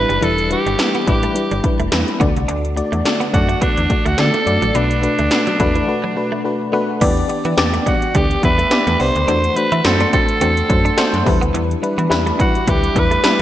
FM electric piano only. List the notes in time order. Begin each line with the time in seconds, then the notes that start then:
Already playing: G3 D4 E4 B4
0.21 E3 G3 D4 E4 B4
0.50 G3 D4 E4 B4
0.78 G3 D4 E4 B4
1.06 G3 D4 E4 B4
1.35 G3 D4 E4 B4
1.63 G3 D4 E4 B4
1.91 G3 D4 E4 B4
2.20 D3 A3 D4 F#4 D5
2.76 A3 D4 F#4 D5
3.05 A3 D4 F#4 D5
3.33 A3 D4 F#4 D5
3.61 A3 D4 F#4 D5
3.90 A3 D4 F#4 D5
4.18 A3 D4 F#4 D5
4.46 A3 D4 F#4 D5
4.74 B2 A3 D4 F#4 B4
5.02 A3 D4 F#4 B4
5.31 A3 D4 F#4 B4
5.59 A3 D4 F#4 B4
5.87 A3 D4 F#4 B4
6.16 A3 D4 F#4 B4
6.44 A3 D4 F#4 B4
6.72 A3 D4 F#4 B4
7.01 E3 B3 D4 G4 D5
7.28 B3 D4 G4 D5
7.57 B3 D4 G4 D5
7.86 B3 D4 G4 D5
8.15 B3 D4 G4 D5
8.43 B3 D4 G4 E5
8.70 B3 D4 G4 D5
9.00 B3 D4 G4 D5
9.28 E3 A3 D4 F#4 C5
9.56 A3 D4 F#4 C5
9.84 A3 D4 F#4 C5
10.13 A3 D4 F#4 C5
10.41 A3 D4 F#4 C5
10.69 A3 D4 F#4 C5
10.97 A3 D4 F#4 C5
11.25 E3 G3 D4 E4 B4
11.82 G3 D4 E4 B4
12.10 G3 D4 E4 B4
12.39 G3 D4 E4 B4
12.67 G3 D4 E4 B4
12.95 G3 D4 E4 B4
13.24 G3 D4 E4 B4